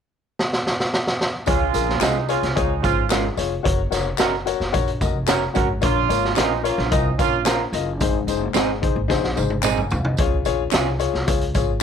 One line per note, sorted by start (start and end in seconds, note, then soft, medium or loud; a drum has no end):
0.39 snare medium
0.53 snare medium
0.67 snare medium
0.80 snare medium
0.94 snare medium
1.07 snare medium
1.21 snare medium
1.46 1.69 C#2 medium
1.46 2.25 C#3 medium
1.46 1.98 G#3 loud
1.46 1.98 C#4 medium
1.46 1.62 F4 medium
1.46 1.98 F4 loud
1.46 1.62 G#4 medium
1.46 1.62 C#5 medium
1.46 kick loud
1.46 closed hi-hat medium
1.46 tambourine soft
1.73 1.96 A#1 medium
1.73 1.89 F4 medium
1.73 1.89 G#4 medium
1.73 1.89 A#4 medium
1.73 closed hi-hat medium
1.73 tambourine medium
1.90 snare soft
2.00 2.34 C2 medium
2.00 2.16 G#3 medium
2.00 2.23 G#3 medium
2.00 2.23 C4 medium
2.00 2.17 C#4 medium
2.00 2.23 D#4 medium
2.00 2.16 F4 medium
2.00 2.17 F4 medium
2.00 2.16 G#4 medium
2.00 2.17 D#5 medium
2.00 snare loud
2.00 clap medium
2.00 closed hi-hat medium
2.00 tambourine medium
2.28 2.50 G#3 medium
2.28 2.50 C#4 medium
2.28 2.50 F4 medium
2.28 2.44 F4 medium
2.28 2.44 G#4 medium
2.28 2.44 C#5 medium
2.28 closed hi-hat medium
2.28 tambourine soft
2.43 2.54 C2 medium
2.43 snare soft
2.43 closed hi-hat soft
2.54 2.79 C#2 medium
2.54 2.77 G#3 medium
2.54 2.77 C4 medium
2.54 2.77 D#4 medium
2.54 2.70 F4 medium
2.54 2.71 G#4 medium
2.54 2.71 C#5 loud
2.54 kick medium
2.54 closed hi-hat medium
2.54 tambourine soft
2.82 3.28 G#1 medium
2.82 3.05 G#3 medium
2.82 3.05 C#4 medium
2.82 2.97 F4 medium
2.82 3.04 F4 loud
2.82 2.98 G#4 medium
2.82 2.98 C5 medium
2.82 kick medium
2.82 closed hi-hat medium
2.82 tambourine medium
3.09 3.25 G#3 medium
3.09 3.26 C#4 medium
3.09 3.25 F4 medium
3.09 3.26 F4 medium
3.09 3.25 G#4 medium
3.09 3.25 A#4 medium
3.09 snare loud
3.09 clap medium
3.09 closed hi-hat medium
3.09 tambourine medium
3.37 3.60 F1 medium
3.37 3.52 F4 medium
3.37 3.52 G#4 medium
3.37 3.53 C#5 medium
3.37 closed hi-hat medium
3.37 tambourine soft
3.63 3.87 F#1 medium
3.63 3.79 F#4 medium
3.63 3.79 A#4 medium
3.63 3.79 C#5 loud
3.63 kick loud
3.63 closed hi-hat loud
3.91 4.14 F1 medium
3.91 4.06 F#4 medium
3.91 4.06 A#4 medium
3.91 4.07 C#5 medium
3.91 snare soft
3.91 closed hi-hat medium
3.91 tambourine medium
4.18 4.53 F#1 medium
4.18 4.34 C#4 medium
4.18 4.34 F#4 medium
4.18 4.35 F#4 medium
4.18 4.34 A#4 medium
4.18 4.35 A#4 medium
4.18 4.34 D#5 medium
4.18 snare loud
4.18 clap medium
4.18 closed hi-hat medium
4.18 tambourine medium
4.46 4.61 F#4 medium
4.46 4.61 A#4 medium
4.46 4.62 C#5 medium
4.46 closed hi-hat medium
4.46 tambourine soft
4.60 4.71 F#1 medium
4.60 snare soft
4.72 4.96 A#1 medium
4.72 4.88 F#4 loud
4.72 4.88 A#4 medium
4.72 4.89 C#5 loud
4.72 kick medium
4.72 closed hi-hat medium
4.72 tambourine soft
4.88 closed hi-hat soft
5.01 5.45 F1 medium
5.01 5.16 F#4 medium
5.01 5.16 A#4 medium
5.01 5.16 D#5 medium
5.01 kick medium
5.01 closed hi-hat medium
5.01 tambourine medium
5.27 5.43 C#4 medium
5.27 5.43 F#4 medium
5.27 5.43 A#4 medium
5.27 5.44 A#4 medium
5.27 5.43 C#5 medium
5.27 snare loud
5.27 clap medium
5.27 closed hi-hat medium
5.27 tambourine medium
5.54 5.78 G#1 medium
5.54 5.67 C#4 medium
5.54 5.70 F#4 medium
5.54 5.67 F#4 medium
5.54 5.70 A#4 medium
5.54 5.68 A#4 medium
5.54 5.70 C#5 medium
5.54 kick medium
5.54 closed hi-hat medium
5.54 tambourine soft
5.81 6.05 A#1 loud
5.81 6.60 A#2 medium
5.81 6.34 A#3 loud
5.81 6.34 C#4 loud
5.81 5.97 F4 medium
5.81 6.34 F4 loud
5.81 5.97 A#4 medium
5.81 5.97 C#5 medium
5.81 kick loud
5.81 closed hi-hat medium
5.81 tambourine soft
6.08 6.32 G#1 medium
6.08 6.24 F4 medium
6.08 6.24 A#4 medium
6.08 6.25 C#5 medium
6.08 closed hi-hat medium
6.08 tambourine medium
6.25 snare soft
6.35 6.70 A#1 medium
6.35 6.58 G#3 medium
6.35 6.58 C4 medium
6.35 6.52 C#4 medium
6.35 6.58 D#4 medium
6.35 6.51 F4 medium
6.35 6.52 F4 medium
6.35 6.51 A#4 medium
6.35 6.53 A#4 medium
6.35 6.52 C5 medium
6.35 snare loud
6.35 clap medium
6.35 closed hi-hat medium
6.35 tambourine medium
6.63 6.86 A#3 medium
6.63 6.86 C#4 medium
6.63 6.79 F4 medium
6.63 6.86 F4 loud
6.63 6.79 A#4 medium
6.63 6.79 C#5 medium
6.63 closed hi-hat medium
6.63 tambourine soft
6.78 6.92 A#1 loud
6.78 snare soft
6.90 7.14 C2 medium
6.90 7.13 G#3 medium
6.90 7.13 C4 medium
6.90 7.13 D#4 medium
6.90 7.06 F4 medium
6.90 7.06 A#4 loud
6.90 7.07 D#5 loud
6.90 kick medium
6.90 closed hi-hat medium
6.90 tambourine soft
7.18 7.63 A#1 medium
7.18 7.40 A#3 medium
7.18 7.40 C#4 medium
7.18 7.33 F4 medium
7.18 7.41 F4 loud
7.18 7.34 A#4 medium
7.18 7.34 C#5 medium
7.18 kick medium
7.18 closed hi-hat medium
7.18 tambourine medium
7.45 7.60 C#4 medium
7.45 7.61 F4 medium
7.45 7.61 A#4 medium
7.45 7.61 C5 medium
7.45 snare loud
7.45 clap loud
7.45 closed hi-hat medium
7.45 tambourine loud
7.73 8.01 F#1 medium
7.73 7.89 F4 medium
7.73 7.89 A#4 medium
7.73 7.89 D#5 medium
7.73 closed hi-hat medium
7.73 tambourine soft
8.00 8.23 G#1 loud
8.00 8.79 G#2 medium
8.00 8.16 D#4 medium
8.00 8.16 G#4 medium
8.00 8.16 C5 medium
8.00 kick loud
8.00 closed hi-hat loud
8.00 tambourine soft
8.27 8.50 F#1 medium
8.27 8.43 D#4 medium
8.27 8.43 G#4 medium
8.27 8.43 C5 medium
8.27 closed hi-hat medium
8.27 tambourine medium
8.54 8.88 G#1 medium
8.54 8.69 C4 medium
8.54 8.70 D#4 medium
8.54 8.70 G#4 medium
8.54 8.71 G#4 medium
8.54 8.70 C5 medium
8.54 snare medium
8.54 clap medium
8.54 closed hi-hat medium
8.54 tambourine medium
8.82 8.97 D#4 medium
8.82 8.97 G#4 medium
8.82 8.97 C5 medium
8.82 kick medium
8.82 closed hi-hat medium
8.96 9.07 G#1 medium
9.08 9.32 A#1 medium
9.08 9.24 D#4 loud
9.08 9.25 G#4 medium
9.08 9.25 C5 loud
9.08 kick medium
9.08 snare medium
9.08 tambourine soft
9.24 snare soft
9.36 9.82 G#1 medium
9.36 9.52 D#4 medium
9.36 9.52 G#4 medium
9.36 9.52 C5 medium
9.36 high tom medium
9.36 tambourine medium
9.50 high tom medium
9.63 9.78 C4 medium
9.63 9.79 D#4 medium
9.63 9.79 G#4 medium
9.63 9.77 A#5 medium
9.63 clap loud
9.63 mid tom medium
9.63 tambourine loud
9.78 9.91 G#5 medium
9.78 mid tom medium
9.90 10.14 C2 medium
9.90 10.04 F5 medium
9.90 floor tom medium
9.90 tambourine soft
10.05 10.31 D#5 medium
10.05 floor tom medium
10.17 10.41 C#2 medium
10.17 10.97 C#3 medium
10.17 10.34 F4 medium
10.17 10.34 G#4 medium
10.17 10.35 C#5 medium
10.17 kick loud
10.17 closed hi-hat medium
10.17 tambourine soft
10.45 10.68 A#1 medium
10.45 10.61 F4 medium
10.45 10.61 G#4 medium
10.45 10.61 C#5 loud
10.45 closed hi-hat medium
10.45 tambourine medium
10.71 11.07 C2 medium
10.71 10.87 C#4 medium
10.71 10.88 F4 medium
10.71 10.89 F4 medium
10.71 10.88 G#4 medium
10.71 10.89 G#4 medium
10.71 10.89 C#5 medium
10.71 snare loud
10.71 clap medium
10.71 closed hi-hat medium
10.71 tambourine medium
10.99 11.15 F4 medium
10.99 11.15 G#4 medium
10.99 11.15 C#5 medium
10.99 closed hi-hat medium
10.99 tambourine soft
11.14 11.25 C2 medium
11.14 snare soft
11.27 11.50 C#2 medium
11.27 11.42 F4 medium
11.27 11.43 G#4 medium
11.27 11.43 C#5 medium
11.27 kick medium
11.27 closed hi-hat medium
11.27 tambourine soft
11.41 closed hi-hat soft
11.54 11.83 G#1 medium
11.54 11.70 F4 medium
11.54 11.70 G#4 medium
11.54 11.70 C#5 medium
11.54 kick medium
11.54 closed hi-hat medium
11.54 tambourine soft